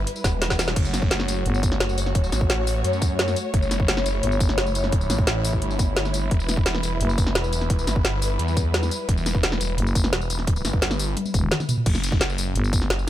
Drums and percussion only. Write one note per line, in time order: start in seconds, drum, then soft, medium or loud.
0.07 closed hi-hat medium
0.16 tambourine soft
0.24 kick loud
0.24 snare medium
0.24 closed hi-hat medium
0.24 tambourine medium
0.42 snare medium
0.42 closed hi-hat loud
0.50 kick medium
0.50 snare medium
0.50 tambourine soft
0.59 snare medium
0.59 closed hi-hat medium
0.59 tambourine medium
0.68 snare medium
0.76 kick loud
0.76 closed hi-hat loud
0.76 crash medium
0.85 tambourine soft
0.94 snare medium
0.94 closed hi-hat medium
0.94 tambourine medium
1.02 kick loud
1.11 snare loud
1.11 closed hi-hat medium
1.20 snare medium
1.28 closed hi-hat medium
1.28 tambourine medium
1.46 closed hi-hat medium
1.54 tambourine soft
1.63 kick loud
1.63 closed hi-hat medium
1.63 tambourine medium
1.72 snare medium
1.80 snare loud
1.80 closed hi-hat loud
1.89 tambourine soft
1.98 closed hi-hat medium
1.98 tambourine medium
2.06 snare soft
2.15 kick loud
2.15 closed hi-hat loud
2.24 tambourine soft
2.32 snare medium
2.32 closed hi-hat medium
2.32 tambourine medium
2.41 kick loud
2.50 snare loud
2.50 closed hi-hat medium
2.67 open hi-hat medium
2.67 tambourine medium
2.84 closed hi-hat medium
2.93 tambourine soft
3.02 kick loud
3.02 closed hi-hat medium
3.02 tambourine medium
3.19 snare loud
3.19 closed hi-hat medium
3.28 snare soft
3.28 tambourine soft
3.36 closed hi-hat medium
3.36 tambourine medium
3.54 kick loud
3.54 closed hi-hat medium
3.62 tambourine soft
3.71 snare medium
3.71 closed hi-hat medium
3.71 tambourine medium
3.80 kick loud
3.88 snare loud
3.88 closed hi-hat medium
3.97 snare medium
4.06 closed hi-hat medium
4.06 tambourine medium
4.23 closed hi-hat medium
4.32 tambourine soft
4.40 kick loud
4.40 closed hi-hat medium
4.40 tambourine medium
4.49 snare medium
4.58 snare loud
4.58 closed hi-hat medium
4.66 tambourine soft
4.75 closed hi-hat medium
4.75 tambourine medium
4.84 snare soft
4.92 kick loud
4.92 closed hi-hat medium
5.01 tambourine soft
5.10 snare medium
5.10 closed hi-hat medium
5.10 tambourine medium
5.18 kick loud
5.27 snare loud
5.27 closed hi-hat medium
5.45 open hi-hat medium
5.45 tambourine medium
5.53 kick medium
5.62 closed hi-hat medium
5.71 tambourine soft
5.79 kick loud
5.79 closed hi-hat medium
5.79 tambourine medium
5.96 snare loud
5.96 closed hi-hat medium
6.05 snare soft
6.05 tambourine soft
6.14 closed hi-hat medium
6.14 tambourine medium
6.31 kick loud
6.31 closed hi-hat medium
6.40 tambourine soft
6.49 snare medium
6.49 closed hi-hat medium
6.49 tambourine medium
6.57 kick loud
6.66 snare loud
6.66 closed hi-hat medium
6.75 snare medium
6.83 closed hi-hat medium
6.83 tambourine medium
7.01 closed hi-hat medium
7.09 tambourine soft
7.18 kick loud
7.18 closed hi-hat medium
7.18 tambourine medium
7.27 snare medium
7.35 snare loud
7.35 closed hi-hat medium
7.44 tambourine soft
7.53 closed hi-hat medium
7.53 tambourine medium
7.61 snare soft
7.70 kick loud
7.70 closed hi-hat medium
7.79 tambourine soft
7.87 snare medium
7.87 closed hi-hat medium
7.87 tambourine medium
7.96 kick loud
8.05 snare loud
8.05 closed hi-hat medium
8.22 open hi-hat medium
8.22 tambourine medium
8.39 closed hi-hat medium
8.48 tambourine soft
8.57 kick loud
8.57 closed hi-hat medium
8.57 tambourine medium
8.74 snare loud
8.74 closed hi-hat medium
8.83 snare soft
8.83 tambourine soft
8.91 closed hi-hat medium
8.91 tambourine medium
9.09 kick loud
9.09 closed hi-hat loud
9.17 tambourine soft
9.26 snare medium
9.26 closed hi-hat medium
9.26 tambourine medium
9.35 kick loud
9.43 snare loud
9.43 closed hi-hat loud
9.52 snare medium
9.61 closed hi-hat medium
9.61 tambourine medium
9.78 closed hi-hat medium
9.87 tambourine soft
9.95 kick loud
9.95 closed hi-hat medium
9.95 tambourine medium
10.04 snare medium
10.13 snare loud
10.13 closed hi-hat medium
10.21 tambourine soft
10.30 closed hi-hat medium
10.30 tambourine medium
10.39 snare soft
10.47 kick loud
10.47 closed hi-hat loud
10.56 tambourine soft
10.65 snare medium
10.65 closed hi-hat medium
10.65 tambourine medium
10.73 kick loud
10.82 snare loud
10.82 closed hi-hat loud
10.91 snare medium
10.91 tambourine soft
10.99 open hi-hat medium
10.99 tambourine medium
11.17 closed hi-hat medium
11.17 high tom medium
11.25 high tom medium
11.25 tambourine soft
11.34 kick loud
11.34 closed hi-hat medium
11.34 tambourine medium
11.43 mid tom medium
11.51 snare loud
11.51 closed hi-hat loud
11.51 mid tom medium
11.60 snare soft
11.60 mid tom medium
11.60 tambourine soft
11.69 closed hi-hat medium
11.69 mid tom loud
11.69 tambourine medium
11.77 mid tom medium
11.86 kick loud
11.86 closed hi-hat loud
11.86 crash loud
11.95 snare soft
11.95 tambourine soft
12.04 closed hi-hat medium
12.04 tambourine medium
12.12 kick loud
12.12 snare soft
12.21 snare loud
12.21 closed hi-hat loud
12.30 tambourine soft
12.38 open hi-hat medium
12.38 tambourine medium
12.56 closed hi-hat medium
12.64 tambourine soft
12.73 kick loud
12.73 closed hi-hat medium
12.73 tambourine medium
12.82 snare soft
12.90 snare loud
12.90 closed hi-hat loud
12.99 tambourine soft